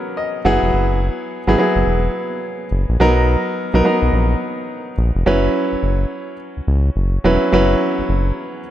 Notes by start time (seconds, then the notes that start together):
Already playing: F#3 B3 C#4 A#4
0.17 D#5
0.45 F#1 F#3 B3 E4 G#4 F#5
0.63 F1
0.73 F#1
1.47 G#1 F#3 B3 E4 G#4
1.58 F#3 B3 E4 G#4
1.76 F#1
1.86 E1
2.71 F#1
2.89 A#1
3.00 B1 F#3 B3 D#4 A#4
3.74 B1 F#3 B3 D#4 A#4
3.85 F#3 B3 D#4 A#4
4.02 B1
4.13 A#1
4.98 A#1
5.15 F1
5.26 F#1 F#3 C#4 E4 B4
5.72 F#1
5.83 F#1
6.57 C#2
6.68 C#2
6.96 F#1
7.24 E1 F#3 C#4 E4 B4
7.52 F#1 F#3 C#4 E4 B4
7.98 F#1
8.09 F#1